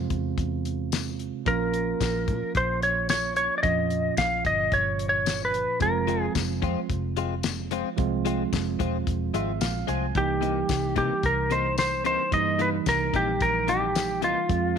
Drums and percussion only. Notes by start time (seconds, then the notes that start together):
0.10 kick, closed hi-hat
0.38 kick, closed hi-hat
0.65 closed hi-hat
0.92 snare, closed hi-hat, tambourine
1.19 closed hi-hat
1.46 kick, closed hi-hat
1.74 closed hi-hat
2.01 kick, snare, closed hi-hat, tambourine
2.28 kick, closed hi-hat
2.55 kick, closed hi-hat
2.82 closed hi-hat
3.09 snare, closed hi-hat, tambourine
3.36 closed hi-hat
3.63 kick, closed hi-hat
3.90 closed hi-hat
4.17 kick, snare, closed hi-hat, tambourine
4.45 kick, closed hi-hat
4.72 kick, closed hi-hat
4.99 closed hi-hat
5.26 snare, closed hi-hat, tambourine
5.54 closed hi-hat
5.80 kick, closed hi-hat
6.08 closed hi-hat
6.35 kick, snare, closed hi-hat, tambourine
6.62 kick, closed hi-hat
6.90 kick, closed hi-hat
7.17 closed hi-hat
7.43 snare, closed hi-hat, tambourine
7.71 closed hi-hat
7.98 kick, closed hi-hat
8.26 closed hi-hat
8.53 kick, snare, closed hi-hat, tambourine
8.80 kick, closed hi-hat
9.07 kick, closed hi-hat
9.34 closed hi-hat
9.61 snare, closed hi-hat, tambourine
9.88 closed hi-hat
10.15 kick, closed hi-hat
10.42 closed hi-hat
10.69 kick, snare, closed hi-hat, tambourine
10.96 kick, closed hi-hat
11.23 kick, closed hi-hat
11.50 closed hi-hat
11.78 snare, closed hi-hat, tambourine
12.05 closed hi-hat
12.32 kick, closed hi-hat
12.59 closed hi-hat
12.86 kick, snare, closed hi-hat, tambourine
13.14 kick, closed hi-hat
13.40 kick, closed hi-hat
13.68 closed hi-hat
13.95 snare, closed hi-hat, tambourine
14.22 closed hi-hat
14.49 kick, closed hi-hat